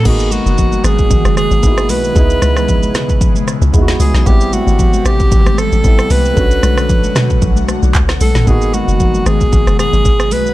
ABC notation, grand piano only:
X:1
M:4/4
L:1/8
Q:"Swing 16ths" 1/4=114
K:G#m
V:1 name="Grand piano"
[A,B,DF]6 [A,B,DEF]2 | [G,B,DE]6 [G,B,DEF]2 | [=G,B,=CE]6 [G,B,CE]2 | [=A,C=DF]8 |
[A,B,DF]8 |]